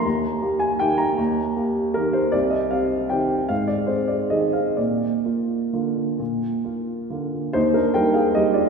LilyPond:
<<
  \new Staff \with { instrumentName = "Upright piano" } { \time 3/4 \key ees \major \tempo 4 = 151 bes''4. aes''8 g''8 bes''8~ | bes''2 bes'8 c''8 | d''8 ees''8 f''4 g''4 | f''8 d''8 c''8 d''8 ees''8 f''8 |
d''2.~ | d''2 r4 | <ees' c''>8 <d' bes'>8 <bes' g''>8 <aes' f''>8 <g' ees''>8 <f' d''>8 | }
  \new Staff \with { instrumentName = "Upright piano" } { \time 3/4 \key ees \major ees,4 <bes g'>4 <ees bes g'>4 | ees,4 <bes g'>4 <ees bes g'>4 | c,4 <c' g'>4 <ees c' g'>4 | aes,4 <c' aes'>4 <ees c' aes'>4 |
bes,4 <bes f'>4 <d bes f'>4 | bes,4 <bes f'>4 <d bes f'>4 | ees,4 <g bes ees'>4 <g bes ees'>4 | }
>>